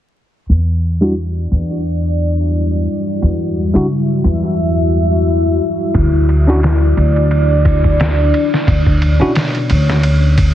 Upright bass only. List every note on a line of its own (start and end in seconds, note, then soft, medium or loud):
0.49 1.49 E2 medium
1.51 2.85 E2 medium
3.22 3.72 E2 medium
3.75 4.21 C#3 medium
4.24 5.58 E2 medium
5.95 6.94 D2 medium
6.97 8.30 D2 medium
8.67 9.17 D2 medium
9.21 9.67 B2 medium
9.70 10.54 D2 medium